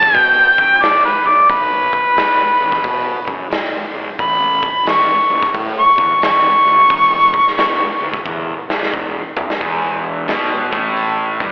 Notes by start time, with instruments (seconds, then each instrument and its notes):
Already playing: harmonica A5
0.03 kick, snare
0.14 fingered electric bass B2, harmonica G5, kick, open hi-hat
0.58 fingered electric bass F#2, harmonica G5, kick
0.81 fingered electric bass B1, harmonica D5, snare, open hi-hat
1.05 harmonica B4
1.24 fingered electric bass B1, harmonica D5
1.49 fingered electric bass B1, harmonica B4, kick, open hi-hat
1.93 kick
2.16 fingered electric bass B1, snare, open hi-hat
2.61 fingered electric bass A1
2.72 kick, snare
2.84 fingered electric bass B2, kick, open hi-hat
3.27 fingered electric bass F#2, kick
3.50 fingered electric bass B1, snare, open hi-hat
3.94 fingered electric bass B1
4.19 fingered electric bass A1, harmonica B5, kick, open hi-hat
4.63 kick
4.85 fingered electric bass A1, harmonica C#6, snare, open hi-hat
5.30 fingered electric bass F#1
5.43 kick, snare
5.54 fingered electric bass A2, kick, open hi-hat
5.79 harmonica C#6
5.98 fingered electric bass E2, kick
6.21 fingered electric bass A1, harmonica C#6, snare, open hi-hat
6.65 fingered electric bass D2
6.90 fingered electric bass E1, kick, open hi-hat
7.34 kick
7.47 snare
7.57 fingered electric bass E1, snare, open hi-hat
8.01 fingered electric bass D2
8.13 kick
8.25 fingered electric bass E2, kick, high tom
8.69 fingered electric bass B1, snare
8.83 snare
8.93 fingered electric bass E1, kick
9.37 fingered electric bass E1, floor tom
9.50 snare
9.61 fingered electric bass E1, overdriven electric guitar E2, kick, open hi-hat
10.28 fingered electric bass B1, overdriven electric guitar B2, snare, open hi-hat
10.72 fingered electric bass A1, overdriven electric guitar A2, kick
10.97 open hi-hat
11.40 fingered electric bass G1, overdriven electric guitar G2, kick